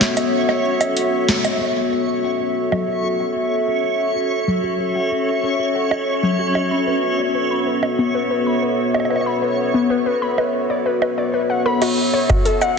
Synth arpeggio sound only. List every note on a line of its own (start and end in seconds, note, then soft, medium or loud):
1.92 2.04 A4 medium
2.08 2.23 F#4 medium
2.24 2.39 F#5 medium
2.40 2.55 F#4 medium
2.72 2.87 F#3 medium
2.88 3.03 F#4 medium
3.04 3.11 F#4 medium
3.20 3.35 F#5 medium
3.36 3.51 F#4 medium
3.68 3.79 A4 medium
3.84 3.99 F#4 medium
4.00 4.15 F#5 medium
4.16 4.31 F#4 medium
4.48 4.63 F#3 loud
4.64 4.78 F#4 loud
4.80 4.86 F#4 medium
4.96 5.11 F#5 medium
5.11 5.27 F#4 medium
5.43 5.55 A4 medium
5.59 5.74 F#4 medium
5.75 5.90 F#5 medium
5.91 6.06 F#4 medium
6.23 6.38 F#3 medium
6.39 6.54 F#4 medium
6.55 6.62 F#4 loud
6.71 6.86 B5 medium
6.87 7.02 B4 medium
7.19 7.30 D5 medium
7.35 7.50 B4 medium
7.51 7.66 B5 medium
7.67 7.82 B4 medium
7.99 8.14 B3 medium
8.15 8.29 B4 loud
8.31 8.37 B4 loud
8.46 8.62 B5 medium
8.62 8.78 B4 medium
8.94 9.06 D5 medium
9.10 9.26 B4 medium
9.26 9.41 B5 medium
9.42 9.57 B4 medium
9.74 9.89 B3 loud
9.90 10.05 B4 loud
10.06 10.13 B4 loud
10.22 10.37 B5 medium
10.38 10.53 B4 medium
10.70 10.81 D5 medium
10.86 10.93 B4 medium
11.02 11.17 B4 medium
11.18 11.29 D5 medium
11.34 11.41 B4 medium
11.50 11.61 F#5 medium
11.66 11.77 B5 loud
11.82 11.97 F#4 medium
12.14 12.29 C#5 medium
12.29 12.45 F#4 medium
12.45 12.52 A4 medium
12.61 12.73 F#5 loud